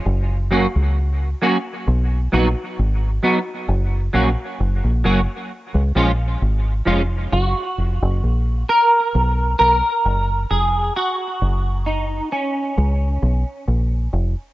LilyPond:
<<
  \new Staff \with { instrumentName = "Clean electric guitar" } { \time 4/4 \key fis \major \tempo 4 = 66 r8 <fis ais cis' fis'>8 r8 <fis ais cis' fis'>8 r8 <fis b dis' fis'>8 r8 <fis b dis' fis'>8 | r8 <fis ais cis' fis'>8 r8 <fis ais cis' fis'>8 r8 <eis gis cis' eis'>8 r8 <eis gis cis' eis'>8 | fis'4. ais'4 ais'4 gis'8 | fis'4 dis'8 cis'4. r4 | }
  \new Staff \with { instrumentName = "Fingered electric bass" } { \clef bass \time 4/4 \key fis \major fis,,8. cis,8. r8 b,,8 ais,,16 r16 gis,,8 r8 | fis,,8 ais,,16 r16 fis,,16 ais,,16 fis,,16 r8 cis,16 ais,,8 gis,,8 eis,,8 | fis,,16 r16 eis,,16 fis,,16 ais,,8 r8 b,,8 b,,16 r16 fis,,8 eis,,8 | r8 fis,,4 r8 cis,8 b,,16 r16 ais,,8 eis,,16 r16 | }
>>